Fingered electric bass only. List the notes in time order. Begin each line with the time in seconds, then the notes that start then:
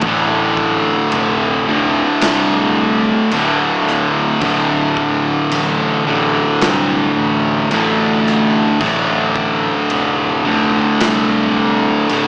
0.02 A1
1.13 F1
2.22 C2
3.32 D1
3.88 D1
4.42 D1
5.51 A1
6.62 C2
7.17 A1
7.73 A1
8.80 A1
9.90 F1
11.00 C2
12.10 D1